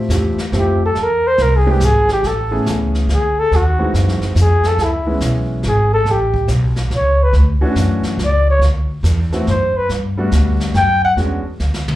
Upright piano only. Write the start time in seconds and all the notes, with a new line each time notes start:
0.11 F3 A3 C4 E4 G4
0.53 F3 A3 C4 E4 G4
1.66 E3 G#3 C4 D4 G4
2.51 E3 A3 B3 C#4 G#4
3.79 E3 G#3 C4 D#4 F#4
5.07 E3 G#3 B3 C#4 E4
7.61 E3 A3 C#4 D4 F#4
9.32 E3 A3 B3 C4 F#4
10.17 G3 A3 B3 D4 F#4
11.17 G#3 B3 C#4 D4 F#4